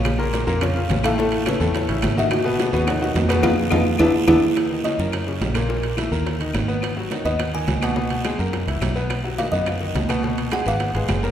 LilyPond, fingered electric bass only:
\new Staff \with { instrumentName = "Fingered electric bass" } { \clef bass \time 4/4 \key ees \minor \tempo 4 = 212 bes,,4. f,4. a,,4~ | a,,4. e,4 a,,8 aes,,4~ | aes,,4. ees,4. f,4 | f,8 r8 f,8 r8 e,8 r8 e,8 r8 |
r4. ges,4. bes,,4~ | bes,,4. ees,4. aes,,4~ | aes,,4. ees,4. des,4~ | des,4. ges,4 des,8 ces,4~ |
ces,4. fis,4. des,4~ | des,4. aes,,4 aes,,8 ges,,4 | }